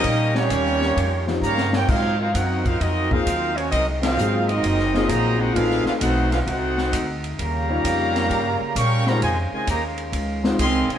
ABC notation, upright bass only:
X:1
M:4/4
L:1/8
Q:"Swing" 1/4=131
K:Eb
V:1 name="Upright bass" clef=bass
B,,2 E,,2 F,,2 G,,2 | A,,2 _G,,2 F,,2 E,,2 | C,,2 A,,,2 _G,,,2 B,,,2 | =A,,, z _C,,2 =C,,2 D,,2 |
E,,2 F,,2 G,, z B,,2 | F,, z E,,2 _D,,2 C,, z |]